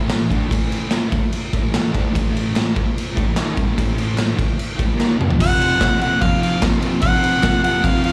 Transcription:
0.00 0.18 A2 medium
0.00 0.18 E3 medium
0.00 0.20 A3 loud
0.10 snare loud
0.10 clap medium
0.10 ride medium
0.19 0.30 A2 medium
0.19 0.30 E3 medium
0.30 0.49 D3 medium
0.30 0.50 A3 medium
0.30 0.51 D4 medium
0.30 kick loud
0.30 ride medium
0.50 1.11 A2 loud
0.50 1.11 E3 loud
0.50 1.12 A3 loud
0.50 kick loud
0.50 ride loud
0.72 ride medium
0.91 snare loud
0.91 clap medium
0.91 ride medium
1.12 1.21 D3 loud
1.12 1.22 A3 loud
1.12 kick loud
1.12 ride medium
1.22 muted distorted electric guitar stroke medium
1.32 ride medium
1.53 1.62 A3 medium
1.53 1.63 E4 loud
1.53 kick loud
1.53 ride medium
1.62 1.82 A2 loud
1.62 1.83 E3 loud
1.62 1.83 A3 loud
1.74 snare loud
1.74 clap loud
1.74 ride loud
1.84 1.91 A2 medium
1.84 1.92 E3 medium
1.92 2.11 D3 medium
1.92 2.13 A3 loud
1.92 2.13 D4 loud
1.92 kick loud
1.92 ride medium
2.12 2.73 A2 medium
2.12 2.74 E3 loud
2.12 2.74 A3 loud
2.12 kick loud
2.16 ride medium
2.37 ride medium
2.56 snare loud
2.56 clap medium
2.56 ride medium
2.75 2.84 D3 medium
2.75 2.85 A3 loud
2.75 kick loud
2.75 ride medium
2.85 muted distorted electric guitar stroke medium
2.98 ride medium
3.14 3.25 A3 medium
3.14 3.25 E4 medium
3.14 kick loud
3.14 ride medium
3.25 3.35 A2 medium
3.25 3.36 E3 loud
3.35 3.53 D#3 medium
3.35 3.55 A#3 loud
3.35 3.57 D#4 loud
3.35 snare loud
3.35 clap loud
3.35 ride medium
3.54 3.65 C3 medium
3.54 3.66 G3 medium
3.54 kick loud
3.54 ride medium
3.65 3.74 A2 medium
3.65 3.75 E3 loud
3.75 4.35 A2 loud
3.75 4.37 E3 loud
3.75 4.36 A3 medium
3.75 kick loud
3.75 ride loud
3.98 ride medium
4.18 snare loud
4.18 clap medium
4.18 ride medium
4.36 4.46 D3 medium
4.36 4.47 A3 loud
4.36 kick loud
4.36 ride medium
4.48 muted distorted electric guitar stroke medium
4.59 ride medium
4.76 4.87 A3 medium
4.76 4.87 E4 medium
4.76 kick loud
4.80 clap medium
4.80 ride medium
4.86 4.94 A2 loud
4.86 4.94 E3 loud
4.94 5.16 D#3 medium
4.94 5.17 A#3 medium
4.94 5.18 D#4 loud
5.00 snare medium
5.00 clap medium
5.16 5.26 C3 medium
5.16 5.27 G3 medium
5.21 mid tom medium
5.27 5.38 A2 medium
5.27 5.38 E3 loud
5.27 floor tom loud
5.35 5.77 F2 loud
5.35 5.79 C3 loud
5.40 5.81 F3 loud
5.40 6.00 F#5 loud
5.40 kick loud
5.40 crash loud
5.61 ride medium
5.77 6.20 F2 medium
5.77 6.03 C3 loud
5.77 snare loud
5.81 5.99 F3 medium
5.81 kick loud
5.81 clap loud
5.81 ride medium
5.99 6.25 F3 medium
5.99 6.20 F#5 medium
5.99 ride medium
6.04 6.22 C3 medium
6.21 6.61 F2 medium
6.21 6.62 C3 medium
6.21 6.41 F5 loud
6.21 kick loud
6.21 clap medium
6.21 ride loud
6.25 6.65 F3 medium
6.42 6.62 F5 medium
6.42 ride medium
6.62 7.01 F2 medium
6.62 6.85 C3 medium
6.62 6.81 F3 medium
6.62 kick loud
6.62 snare loud
6.62 clap loud
6.62 ride loud
6.81 7.06 F3 medium
6.81 ride medium
6.86 7.03 C3 soft
7.01 7.42 F2 loud
7.01 7.43 C3 loud
7.01 7.62 F#5 loud
7.01 kick loud
7.01 ride loud
7.06 7.46 F3 loud
7.24 ride medium
7.42 7.82 F2 medium
7.42 7.66 C3 medium
7.42 kick loud
7.42 snare loud
7.42 clap loud
7.42 ride loud
7.47 7.63 F3 loud
7.63 7.83 C3 medium
7.63 7.86 F3 medium
7.63 7.87 F#5 medium
7.63 ride medium
7.82 8.12 F2 medium
7.82 8.12 C3 medium
7.82 8.04 F5 medium
7.82 kick loud
7.82 clap medium
7.82 ride loud
7.87 8.12 F3 medium
8.04 8.12 F5 medium
8.04 ride medium

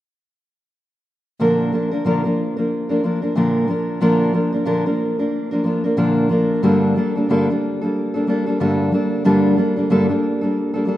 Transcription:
1.40 1.73 A#2 medium
1.40 1.73 D3 medium
1.40 1.71 F3 medium
1.40 1.72 A#3 medium
1.40 1.73 D4 medium
1.40 1.73 A#4 medium
1.72 1.92 F3 soft
1.72 1.92 A#3 soft
1.72 1.92 D4 soft
1.72 1.90 A#4 medium
1.91 2.05 F3 soft
1.91 2.04 A#3 soft
1.91 2.05 D4 soft
1.91 2.05 A#4 soft
2.05 2.25 A#2 medium
2.05 2.25 D3 medium
2.05 2.25 F3 medium
2.05 2.24 A#3 medium
2.05 2.24 D4 medium
2.05 2.23 A#4 medium
2.24 2.58 F3 soft
2.24 2.57 A#3 soft
2.24 2.57 D4 soft
2.24 2.55 A#4 soft
2.57 2.90 F3 soft
2.57 2.90 A#3 soft
2.57 2.89 D4 soft
2.57 2.88 A#4 soft
2.89 3.02 F3 soft
2.89 3.03 A#3 soft
2.89 3.03 D4 soft
2.89 3.03 A#4 soft
3.03 3.23 F3 medium
3.03 3.22 A#3 soft
3.03 3.22 D4 medium
3.03 3.20 A#4 medium
3.22 3.35 F3 soft
3.22 3.36 A#3 soft
3.22 3.36 D4 soft
3.22 3.36 A#4 soft
3.35 3.69 A#2 medium
3.35 3.69 D3 medium
3.35 3.66 F3 medium
3.35 3.67 A#3 medium
3.35 3.68 D4 medium
3.35 3.69 A#4 medium
3.68 4.00 F3 medium
3.68 4.01 A#3 soft
3.68 4.00 D4 soft
3.68 4.01 A#4 medium
4.01 4.34 A#2 medium
4.01 4.34 D3 medium
4.01 4.32 F3 medium
4.01 4.33 A#3 medium
4.01 4.33 D4 medium
4.01 4.35 A#4 medium
4.33 4.53 F3 medium
4.33 4.53 A#3 soft
4.33 4.53 D4 soft
4.33 4.51 A#4 soft
4.52 4.65 F3 soft
4.52 4.65 A#3 soft
4.52 4.66 D4 soft
4.52 4.66 A#4 soft
4.65 4.86 A#2 medium
4.65 4.86 D3 medium
4.65 4.86 F3 medium
4.65 4.86 A#3 medium
4.65 4.85 D4 medium
4.65 4.85 A#4 medium
4.86 5.20 F3 soft
4.86 5.19 A#3 soft
4.86 5.18 D4 soft
4.86 5.18 A#4 soft
5.19 5.52 F3 soft
5.19 5.52 A#3 soft
5.19 5.51 D4 soft
5.19 5.50 A#4 soft
5.51 5.63 F3 soft
5.51 5.64 A#3 soft
5.51 5.65 D4 soft
5.51 5.65 A#4 medium
5.64 5.84 F3 medium
5.64 5.84 A#3 medium
5.64 5.84 D4 soft
5.64 5.83 A#4 medium
5.84 5.96 F3 soft
5.84 5.96 A#3 soft
5.84 5.97 D4 soft
5.84 5.97 A#4 soft
5.97 6.30 A#2 medium
5.97 6.30 D3 medium
5.97 6.28 F3 medium
5.97 6.29 A#3 medium
5.97 6.30 D4 medium
5.97 6.31 A#4 medium
6.29 6.62 F3 medium
6.29 6.62 A#3 medium
6.29 6.63 D4 medium
6.29 6.64 A#4 medium
6.62 6.95 G2 medium
6.62 6.96 D3 medium
6.62 6.95 G3 medium
6.62 6.96 A#3 medium
6.62 6.96 D4 medium
6.62 6.96 A4 medium
6.96 7.15 G3 soft
6.96 7.16 A#3 soft
6.96 7.15 D4 medium
6.96 7.14 A4 medium
7.15 7.29 G3 soft
7.15 7.29 A#3 soft
7.15 7.29 D4 soft
7.15 7.28 A4 soft
7.29 7.48 G2 medium
7.29 7.48 D3 medium
7.29 7.49 G3 medium
7.29 7.49 A#3 medium
7.29 7.49 D4 medium
7.29 7.48 A4 medium
7.49 7.82 G3 soft
7.49 7.82 A#3 soft
7.49 7.81 D4 soft
7.49 7.80 A4 soft
7.81 8.15 G3 soft
7.81 8.15 A#3 soft
7.81 8.14 D4 soft
7.81 8.13 A4 soft
8.14 8.26 G3 soft
8.14 8.27 A#3 soft
8.14 8.27 D4 soft
8.14 8.27 A4 soft
8.27 8.46 G3 medium
8.27 8.47 A#3 medium
8.27 8.46 D4 medium
8.27 8.45 A4 medium
8.46 8.60 G3 soft
8.46 8.60 A#3 soft
8.46 8.60 D4 soft
8.46 8.59 A4 soft
8.60 8.92 G2 medium
8.60 8.92 D3 medium
8.60 8.91 G3 medium
8.60 8.92 A#3 medium
8.60 8.92 D4 medium
8.60 8.93 A4 medium
8.92 9.24 G3 soft
8.92 9.24 A#3 medium
8.92 9.25 D4 medium
8.92 9.25 A4 medium
9.24 9.57 G2 medium
9.24 9.57 D3 medium
9.24 9.55 G3 medium
9.24 9.56 A#3 medium
9.24 9.57 D4 medium
9.24 9.58 A4 medium
9.57 9.76 G3 soft
9.57 9.77 A#3 soft
9.57 9.76 D4 medium
9.57 9.75 A4 medium
9.76 9.90 G3 soft
9.76 9.89 A#3 soft
9.76 9.90 D4 soft
9.76 9.89 A4 soft
9.90 10.09 G2 medium
9.90 10.09 D3 medium
9.90 10.09 G3 medium
9.90 10.09 A#3 medium
9.90 10.08 D4 medium
9.90 10.08 A4 medium
10.09 10.43 G3 soft
10.09 10.42 A#3 soft
10.09 10.41 D4 soft
10.09 10.40 A4 soft
10.41 10.75 G3 soft
10.41 10.74 A#3 soft
10.41 10.74 D4 soft
10.41 10.72 A4 soft
10.74 10.84 G3 soft
10.74 10.86 A#3 soft
10.74 10.86 D4 soft
10.74 10.87 A4 medium
10.85 10.97 G3 soft
10.85 10.97 A#3 medium
10.85 10.97 D4 medium
10.85 10.97 A4 medium

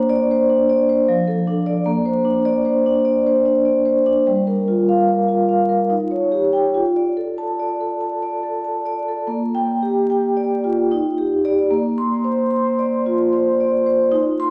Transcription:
0.00 1.06 A#3 medium
0.00 0.23 D4 medium
0.00 0.31 C5 medium
0.09 0.42 D5 medium
0.31 0.63 C5 medium
0.50 0.82 D4 medium
0.69 1.01 D5 medium
0.89 1.09 C5 medium
1.09 1.85 F3 medium
1.28 1.60 A4 medium
1.47 1.80 D4 medium
1.66 1.87 D5 medium
1.86 4.23 A#3 medium
2.05 2.38 C5 medium
2.25 2.58 D4 medium
2.45 2.79 D5 medium
2.65 2.99 C5 medium
2.86 3.19 D4 medium
3.05 3.39 D5 medium
3.27 3.59 C5 medium
3.46 3.79 D4 medium
3.65 3.99 D5 medium
3.85 4.19 C5 medium
4.06 4.27 D4 medium
4.27 5.87 G3 medium
4.47 4.80 A#4 medium
4.68 5.01 F4 medium
4.89 5.21 F5 medium
5.09 5.42 A#4 medium
5.28 5.62 F4 medium
5.49 5.82 F5 medium
5.69 5.90 A#4 medium
5.90 6.72 D#4 medium
6.11 6.45 C#5 medium
6.32 6.66 G4 medium
6.53 6.75 G5 medium
6.74 9.24 F4 medium
6.96 7.30 D5 medium
7.17 7.51 A4 medium
7.38 7.72 A5 medium
7.59 7.93 D5 medium
7.81 8.15 A4 soft
8.01 8.35 A5 medium
8.22 8.57 D5 medium
8.43 8.78 A4 medium
8.64 8.99 A5 medium
8.86 9.19 D5 medium
9.08 9.29 A4 soft
9.27 10.86 A#3 medium
9.55 9.98 G5 medium
9.83 10.26 G4 medium
10.10 10.53 G5 medium
10.37 10.80 D5 medium
10.64 10.91 F4 medium
10.91 11.70 D#4 medium
11.18 11.44 G4 medium
11.45 11.69 G4 medium
11.45 11.69 D5 medium
11.71 14.09 A#3 medium
11.98 12.42 C6 medium
12.24 12.68 C5 medium
12.51 12.95 C6 medium
12.79 13.22 D5 medium
13.06 13.49 F4 medium
13.33 13.76 C5 medium
13.60 13.87 D5 medium
13.86 14.13 C5 medium
14.12 14.50 D#4 medium
14.40 14.50 C6 loud

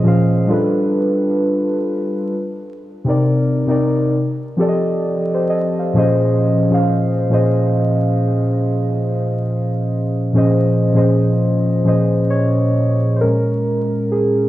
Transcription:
0.00 0.03 A#2 loud
0.00 0.49 A#2 medium
0.00 0.04 F3 medium
0.00 0.49 F3 medium
0.00 0.05 C#4 loud
0.00 0.06 G#4 medium
0.00 0.07 C5 medium
0.00 0.51 D#5 loud
0.05 0.50 C#4 medium
0.05 0.50 G#4 medium
0.05 0.51 C5 medium
0.05 0.51 F5 medium
0.47 1.96 G3 medium
0.47 1.97 D4 medium
0.47 1.98 F4 medium
0.47 1.98 A4 medium
0.52 1.99 B4 loud
3.05 3.51 C3 medium
3.05 3.52 C4 medium
3.05 3.52 D#4 medium
3.05 3.53 A#4 medium
3.10 3.54 D5 medium
3.66 4.12 C3 medium
3.66 4.13 C4 medium
3.66 4.14 D#4 medium
3.66 4.14 A#4 medium
3.71 4.15 D5 medium
4.57 5.49 F3 medium
4.57 5.50 C4 medium
4.57 5.04 G4 medium
4.57 5.05 A4 medium
4.62 4.69 D5 medium
4.68 5.09 D#5 medium
5.34 5.49 G4 medium
5.34 5.49 C5 medium
5.50 5.78 A4 medium
5.50 5.78 D#5 medium
5.79 5.96 C5 soft
5.79 6.22 F5 medium
5.93 6.40 A#2 loud
5.93 6.40 F3 medium
5.93 6.41 C#4 medium
5.93 6.41 G#4 medium
5.98 6.42 C5 loud
5.98 6.42 D#5 loud
6.69 7.15 A#2 medium
6.69 7.15 F3 medium
6.69 7.16 C#4 medium
6.69 7.16 G#4 medium
6.73 7.17 C5 medium
6.73 7.18 F5 medium
7.29 8.56 A#2 medium
7.29 8.57 F3 medium
7.29 8.57 C#4 medium
7.29 8.58 G#4 medium
7.33 8.58 C5 medium
7.33 8.59 D#5 medium
10.33 10.79 A#2 medium
10.33 10.79 F3 medium
10.33 10.80 C#4 medium
10.33 10.80 G#4 medium
10.37 10.81 C5 medium
10.37 10.81 D#5 medium
10.93 11.59 A#2 medium
10.93 11.60 F3 medium
10.93 11.60 C#4 medium
10.93 11.61 G#4 medium
10.97 11.61 C5 medium
10.97 11.62 D#5 medium
11.84 12.76 A#2 medium
11.84 12.77 F3 medium
11.84 12.77 C#4 medium
11.84 12.78 G#4 medium
11.88 12.78 C5 medium
11.88 12.79 D#5 medium
12.30 13.13 C#5 loud
13.16 13.22 C5 medium
13.21 14.49 A#2 medium
13.21 14.49 G#3 soft
13.21 14.49 C#4 medium
13.21 14.15 A#4 loud
14.12 14.26 G#4 medium

